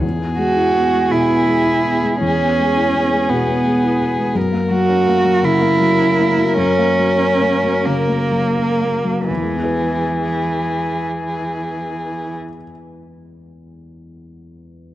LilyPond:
<<
  \new Staff \with { instrumentName = "Violin" } { \time 6/8 \key e \major \tempo 4. = 50 gis'2.~ | gis'2. | ais'2.~ | ais'2~ ais'8 r8 |
gis'2.~ | gis'2. | }
  \new Staff \with { instrumentName = "Cello" } { \time 6/8 \key e \major r8 fis'4 e'4. | cis'4. b4. | r8 fis'4 e'4. | cis'4. ais4. |
e2.~ | e2. | }
  \new Staff \with { instrumentName = "Felt piano" } { \time 6/8 \key e \major e,16 b16 gis16 e'16 b16 gis16 b,16 b16 gis16 e'16 b16 gis16 | e,16 b16 gis16 e'16 b16 gis16 b,16 b16 gis16 e'16 b16 gis16 | fis,16 ais16 fis16 cis'16 ais16 fis16 cis16 ais16 fis16 cis'16 ais16 fis16 | fis,16 ais16 fis16 cis'16 ais16 fis16 cis16 ais16 fis16 cis'16 ais16 fis16 |
<e, e gis b e' b'>2.~ | <e, e gis b e' b'>2. | }
>>